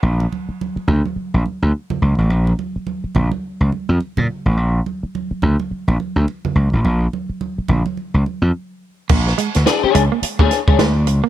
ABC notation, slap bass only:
X:1
M:4/4
L:1/16
Q:"Swing 16ths" 1/4=106
K:Bbmix
V:1 name="Slap bass" clef=bass
B,,,2 z4 D,, z2 B,,, z D,, z2 _D,, =A,,, | B,,,2 z4 B,,, z2 _D,, z F,, z B,, z =A,,, | B,,,2 z4 D,, z2 B,,, z D,, z2 _D,, =A,,, | B,,,2 z4 B,,, z2 _D,, z F,, z4 |
B,,,2 z D,, z2 ^C,, z2 D,, z C,, D,,2 C,, z |]